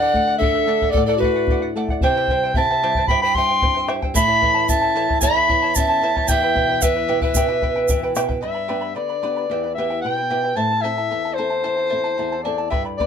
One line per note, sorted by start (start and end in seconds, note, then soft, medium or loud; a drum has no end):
0.00 0.90 D3 medium
0.00 0.14 A4 soft
0.00 0.37 D5 loud
0.00 0.15 D5 medium
0.00 0.37 F#5 loud
0.00 0.15 F#5 medium
0.13 0.40 A3 soft
0.13 0.28 A4 medium
0.13 0.28 D5 medium
0.13 0.26 F#5 medium
0.13 bombo low soft
0.28 0.41 D5 soft
0.28 0.41 F#5 medium
0.38 0.66 D4 medium
0.38 0.92 A4 medium
0.38 0.55 A4 medium
0.38 0.92 E5 medium
0.38 bombo low medium
0.43 0.55 D5 medium
0.43 0.54 F#5 medium
0.55 0.67 D5 soft
0.55 0.67 F#5 soft
0.66 0.93 A3 medium
0.66 0.81 A4 medium
0.66 0.81 D5 medium
0.66 0.81 F#5 medium
0.82 0.95 D5 soft
0.82 0.95 F#5 medium
0.82 bombo low medium
0.91 1.98 A2 medium
0.91 1.05 A4 medium
0.91 1.05 D5 medium
0.91 bombo low medium
0.97 1.08 A4 medium
0.97 1.08 D5 medium
0.97 1.07 F#5 medium
1.05 1.17 A4 medium
1.05 1.22 A4 medium
1.05 1.19 D5 medium
1.05 1.22 D5 medium
1.05 1.21 F#5 medium
1.18 1.47 A3 medium
1.18 1.69 F#4 medium
1.18 1.70 B4 medium
1.22 1.35 A4 medium
1.22 1.36 D5 medium
1.22 1.35 F#5 medium
1.22 bombo low medium
1.36 1.49 D5 soft
1.36 1.48 F#5 medium
1.47 1.73 D4 medium
1.47 1.62 A4 medium
1.47 bombo low medium
1.51 1.62 D5 medium
1.51 1.61 F#5 medium
1.62 1.76 D5 soft
1.62 1.75 F#5 medium
1.76 2.01 A3 medium
1.76 1.89 A4 medium
1.76 1.89 D5 medium
1.76 1.89 F#5 medium
1.88 2.03 D5 soft
1.88 2.02 F#5 medium
1.88 bombo low medium
2.01 3.06 C3 medium
2.01 2.16 E4 medium
2.01 2.15 G4 medium
2.01 2.52 C5 medium
2.01 2.16 C5 medium
2.01 2.16 E5 medium
2.01 2.52 G5 medium
2.01 2.16 G5 loud
2.01 bombo low medium
2.17 2.29 E4 medium
2.17 2.29 G4 soft
2.17 2.29 C5 medium
2.17 2.29 E5 medium
2.17 2.29 G5 medium
2.28 2.55 G3 medium
2.28 2.43 E4 medium
2.28 2.43 C5 medium
2.28 2.43 E5 medium
2.28 2.42 G5 medium
2.28 bombo low medium
2.43 2.56 E4 soft
2.43 2.56 C5 soft
2.43 2.56 G5 medium
2.54 2.82 C4 medium
2.54 2.69 E4 medium
2.54 2.69 C5 medium
2.54 3.04 E5 medium
2.54 2.69 E5 medium
2.54 2.69 G5 medium
2.54 3.06 A5 medium
2.54 bombo low medium
2.71 2.82 E4 soft
2.71 2.82 C5 soft
2.71 2.83 G5 soft
2.83 3.09 G3 soft
2.83 2.96 E4 medium
2.83 2.95 G4 medium
2.83 2.96 C5 medium
2.83 2.96 E5 medium
2.83 2.96 G5 medium
2.95 3.09 E4 soft
2.95 3.09 C5 medium
2.95 3.09 G5 medium
2.95 bombo low medium
3.08 4.12 G2 medium
3.08 3.22 E4 medium
3.08 3.22 G4 medium
3.08 3.21 C5 medium
3.08 3.22 E5 medium
3.08 3.21 G5 medium
3.08 3.20 B5 loud
3.08 bombo low medium
3.22 3.36 E4 medium
3.22 3.36 G4 medium
3.22 3.35 C5 medium
3.22 3.36 E5 medium
3.22 3.35 G5 medium
3.22 3.37 G5 medium
3.22 3.36 B5 loud
3.34 3.61 G3 medium
3.34 3.49 E4 medium
3.34 3.49 C5 medium
3.34 3.49 E5 medium
3.34 3.89 G5 medium
3.34 3.47 G5 medium
3.34 3.88 C6 loud
3.34 bombo low medium
3.49 3.61 E4 soft
3.49 3.61 C5 soft
3.49 3.62 G5 medium
3.62 3.87 C4 medium
3.62 3.75 E4 medium
3.62 3.75 C5 medium
3.62 3.75 E5 medium
3.62 3.73 G5 medium
3.62 bombo low medium
3.75 3.88 E4 soft
3.75 3.88 C5 soft
3.75 3.88 G5 medium
3.88 4.14 G3 medium
3.88 4.02 E4 medium
3.88 4.02 G4 medium
3.88 4.02 C5 medium
3.88 4.02 E5 medium
3.88 4.01 G5 medium
3.88 bombo rim medium
4.02 4.14 E4 soft
4.02 4.15 C5 soft
4.02 4.15 G5 medium
4.02 bombo low medium
4.14 5.18 A2 medium
4.14 4.28 E4 medium
4.14 4.28 A4 medium
4.14 4.27 C#5 medium
4.14 4.64 E5 loud
4.14 4.28 E5 medium
4.14 4.27 A5 medium
4.14 4.65 B5 loud
4.14 bombo low medium
4.14 shaker medium
4.28 4.41 E4 medium
4.28 4.42 A4 medium
4.28 4.42 C#5 medium
4.28 4.41 E5 medium
4.28 4.42 A5 medium
4.41 4.67 E3 medium
4.41 4.55 E4 medium
4.41 4.54 C#5 medium
4.41 4.55 E5 medium
4.41 4.53 A5 medium
4.41 bombo low medium
4.54 4.68 E4 soft
4.54 4.69 C#5 soft
4.54 4.68 A5 medium
4.68 4.95 C#4 medium
4.68 4.81 E4 medium
4.68 4.81 C#5 medium
4.68 5.18 E5 medium
4.68 4.82 E5 medium
4.68 5.18 A5 medium
4.68 4.80 A5 medium
4.68 bombo low medium
4.68 shaker medium
4.81 4.94 E4 soft
4.81 4.95 C#5 soft
4.81 4.95 A5 medium
4.95 5.21 E3 medium
4.95 5.09 E4 medium
4.95 5.09 A4 medium
4.95 5.09 C#5 medium
4.95 5.09 E5 medium
4.95 5.08 A5 medium
5.09 5.22 E4 soft
5.09 5.22 C#5 soft
5.09 5.22 A5 medium
5.09 bombo low medium
5.21 6.25 E2 medium
5.21 5.35 E4 medium
5.21 5.35 A4 medium
5.21 5.34 C#5 medium
5.21 5.77 E5 medium
5.21 5.35 E5 medium
5.21 5.34 A5 medium
5.21 5.77 B5 loud
5.21 bombo low medium
5.21 shaker medium
5.36 5.48 E4 medium
5.36 5.49 A4 medium
5.36 5.48 C#5 medium
5.36 5.47 E5 medium
5.36 5.49 A5 medium
5.48 5.75 E3 medium
5.48 5.62 E4 medium
5.48 5.62 C#5 medium
5.48 5.62 E5 medium
5.48 5.61 A5 medium
5.48 bombo low medium
5.62 5.75 E4 soft
5.62 5.75 C#5 soft
5.62 5.75 A5 medium
5.75 6.01 C#4 medium
5.75 5.89 E4 medium
5.75 5.88 C#5 medium
5.75 5.89 E5 medium
5.75 6.30 E5 medium
5.75 6.30 A5 loud
5.75 5.88 A5 medium
5.75 bombo low medium
5.75 shaker medium
5.89 6.02 E4 soft
5.89 6.02 C#5 medium
5.89 6.02 A5 medium
6.01 6.27 E3 medium
6.01 6.16 E4 medium
6.01 6.16 A4 medium
6.01 6.16 C#5 medium
6.01 6.16 E5 medium
6.01 6.15 A5 medium
6.16 6.29 E4 soft
6.16 6.29 C#5 medium
6.16 6.29 A5 medium
6.16 bombo low medium
6.27 7.32 E2 medium
6.27 6.41 E4 medium
6.27 6.42 G4 medium
6.27 6.42 B4 medium
6.27 6.85 E5 medium
6.27 6.42 E5 medium
6.27 6.84 G5 loud
6.27 6.41 G5 medium
6.27 bombo low medium
6.27 shaker medium
6.43 6.55 E4 medium
6.43 6.56 G4 medium
6.43 6.55 B4 medium
6.43 6.54 E5 medium
6.43 6.55 G5 medium
6.55 6.81 B2 medium
6.55 6.69 E4 medium
6.55 6.69 B4 medium
6.55 6.69 E5 medium
6.55 6.68 G5 medium
6.55 bombo low medium
6.69 6.82 E4 soft
6.69 6.82 B4 soft
6.69 6.82 G5 medium
6.82 7.08 E3 medium
6.82 6.96 E4 medium
6.82 7.21 B4 medium
6.82 6.95 B4 medium
6.82 6.95 E5 medium
6.82 7.21 E5 medium
6.82 6.94 G5 medium
6.82 bombo low medium
6.82 shaker loud
6.96 7.08 E4 soft
6.96 7.08 B4 soft
6.96 7.08 G5 medium
7.08 7.34 B2 medium
7.08 7.22 E4 medium
7.08 7.22 G4 medium
7.08 7.22 B4 medium
7.08 7.22 E5 medium
7.08 7.21 G5 medium
7.21 7.35 E4 soft
7.21 8.11 B4 medium
7.21 7.36 B4 medium
7.21 8.12 E5 medium
7.21 7.35 G5 medium
7.21 bombo low medium
7.35 8.14 B2 medium
7.35 7.48 E4 medium
7.35 7.48 G4 medium
7.35 7.47 B4 medium
7.35 7.48 E5 medium
7.35 7.47 G5 medium
7.35 bombo low medium
7.35 shaker medium
7.48 7.62 E4 medium
7.48 7.62 G4 medium
7.48 7.62 B4 medium
7.48 7.61 E5 medium
7.48 7.62 G5 medium
7.62 7.76 E4 medium
7.62 7.88 B4 medium
7.62 7.75 B4 medium
7.62 7.76 E5 medium
7.62 7.74 G5 medium
7.62 bombo low medium
7.76 7.89 E4 soft
7.76 7.90 B4 soft
7.76 7.89 G5 medium
7.88 8.15 E3 medium
7.88 8.03 E4 medium
7.88 8.03 B4 medium
7.88 8.03 E5 medium
7.88 8.02 G5 medium
7.88 bombo low medium
7.88 shaker medium
8.03 8.15 E4 soft
8.03 8.16 B4 medium
8.03 8.16 G5 medium
8.15 8.42 B2 medium
8.15 8.29 E4 medium
8.15 8.29 G4 medium
8.15 8.28 B4 medium
8.15 8.29 E5 medium
8.15 8.27 G5 loud
8.15 bombo rim medium
8.15 shaker medium
8.29 8.42 E4 medium
8.29 8.41 B4 medium
8.29 8.41 G5 medium
8.29 bombo low medium
8.42 8.95 G2 medium
8.42 8.55 G4 medium
8.42 8.54 B4 medium
8.42 8.54 D5 medium
8.42 8.92 E5 medium
8.42 8.56 G5 medium
8.42 8.53 B5 medium
8.54 8.67 B4 soft
8.54 8.68 D5 soft
8.54 8.68 B5 soft
8.68 9.13 B3 soft
8.68 9.13 D4 soft
8.68 8.82 G4 medium
8.68 9.13 G4 soft
8.68 8.81 B4 medium
8.68 8.80 D5 medium
8.68 8.82 G5 medium
8.68 8.80 B5 medium
8.81 8.95 B4 soft
8.81 8.95 D5 soft
8.81 8.95 B5 soft
8.95 9.48 D3 medium
8.95 9.09 B4 soft
8.95 9.72 D5 medium
8.95 9.09 D5 medium
8.95 9.09 G5 medium
8.95 9.08 B5 medium
9.09 9.22 B4 soft
9.09 9.22 D5 soft
9.09 9.22 B5 soft
9.22 9.44 B3 soft
9.22 9.45 D4 soft
9.22 9.36 G4 medium
9.22 9.45 G4 soft
9.22 9.36 B4 medium
9.22 9.36 D5 medium
9.22 9.36 G5 medium
9.22 9.35 B5 medium
9.36 9.50 B4 soft
9.36 9.50 D5 soft
9.36 9.50 B5 soft
9.50 10.02 E2 medium
9.50 9.64 E4 medium
9.50 9.64 G4 medium
9.50 9.64 B4 medium
9.50 9.63 E5 medium
9.50 9.63 G5 medium
9.64 9.77 E4 soft
9.64 9.77 B4 soft
9.64 9.77 G5 soft
9.74 10.20 B3 soft
9.74 10.20 E4 soft
9.74 10.20 G4 soft
9.74 9.91 G4 medium
9.74 10.00 E5 medium
9.74 9.91 E5 medium
9.78 9.90 E4 medium
9.78 9.90 B4 medium
9.78 9.89 G5 medium
9.90 10.03 E4 soft
9.90 10.04 B4 soft
9.90 10.04 G5 soft
10.01 10.56 B2 medium
10.01 10.17 E4 soft
10.01 10.16 B4 soft
10.01 10.17 E5 soft
10.01 10.58 G5 medium
10.06 10.15 G5 medium
10.16 10.30 E4 soft
10.16 10.30 B4 soft
10.16 10.30 G5 soft
10.30 10.52 B3 soft
10.30 10.52 E4 soft
10.30 10.44 E4 medium
10.30 10.44 G4 medium
10.30 10.52 G4 soft
10.30 10.43 B4 medium
10.30 10.44 E5 medium
10.30 10.43 G5 medium
10.44 10.55 E4 soft
10.44 10.57 B4 soft
10.44 10.57 G5 soft
10.56 11.09 A2 medium
10.56 10.70 E4 medium
10.56 10.71 A4 medium
10.56 10.70 C5 medium
10.56 10.70 E5 medium
10.56 10.83 A5 medium
10.56 10.70 A5 medium
10.71 10.83 E4 soft
10.71 10.83 A4 soft
10.71 10.83 A5 soft
10.81 11.27 C4 soft
10.81 10.98 E4 medium
10.81 11.28 E4 soft
10.81 10.97 A4 medium
10.81 10.97 C5 medium
10.81 11.36 E5 medium
10.81 10.97 E5 medium
10.81 10.96 A5 medium
10.86 11.28 A4 soft
10.98 11.10 E4 soft
10.98 11.10 A4 soft
10.98 11.11 A5 soft
11.10 11.63 E2 medium
11.10 11.24 E4 medium
11.10 11.24 A4 soft
11.10 11.24 E5 soft
11.10 11.24 A5 medium
11.25 11.37 E4 soft
11.25 11.37 A4 soft
11.25 11.38 A5 soft
11.34 11.50 E4 medium
11.34 12.42 C5 medium
11.34 11.51 C5 medium
11.34 11.51 E5 medium
11.38 11.81 C4 soft
11.38 11.82 E4 soft
11.38 11.50 A4 medium
11.38 11.82 A4 soft
11.38 11.49 A5 medium
11.50 11.63 E4 soft
11.50 11.63 A4 soft
11.50 11.63 A5 soft
11.64 12.17 E2 medium
11.64 11.77 E4 medium
11.64 11.76 A4 medium
11.64 11.78 C5 medium
11.64 11.78 E5 medium
11.64 11.76 A5 medium
11.77 11.89 E4 soft
11.77 11.89 A4 soft
11.77 11.89 A5 soft
11.90 12.35 C4 soft
11.90 12.04 E4 medium
11.90 12.35 E4 soft
11.90 12.03 A4 medium
11.90 12.36 A4 soft
11.90 12.04 C5 medium
11.90 12.04 E5 medium
11.90 12.03 A5 medium
12.04 12.16 E4 soft
12.04 12.18 A4 soft
12.04 12.18 A5 medium
12.17 12.71 E2 medium
12.17 12.32 E4 medium
12.17 12.31 A4 medium
12.17 12.31 E5 medium
12.17 12.31 A5 medium
12.32 12.44 E4 soft
12.32 12.45 A4 soft
12.32 12.44 A5 soft
12.43 12.67 C4 soft
12.43 12.58 E4 medium
12.43 12.67 E4 soft
12.43 12.57 A4 medium
12.43 12.59 C5 medium
12.43 12.69 D5 medium
12.43 12.59 E5 medium
12.43 12.57 A5 medium
12.47 12.68 A4 soft
12.58 12.71 E4 soft
12.58 12.71 A4 soft
12.58 12.71 A5 soft
12.70 12.85 G4 medium
12.70 12.85 B4 medium
12.70 12.84 D5 medium
12.70 12.83 E5 medium
12.70 12.85 G5 medium
12.70 12.84 B5 medium
12.70 bombo low medium
12.75 13.07 G2 medium
12.85 12.99 B4 soft
12.85 12.99 D5 soft
12.85 12.99 B5 soft
12.97 13.07 B3 soft
12.97 13.07 D4 soft
12.97 13.07 G4 medium
12.97 13.07 G4 soft
12.97 13.07 B4 medium
12.97 13.07 D5 medium
12.97 13.07 G5 medium
12.97 13.07 B5 medium
12.97 bombo low soft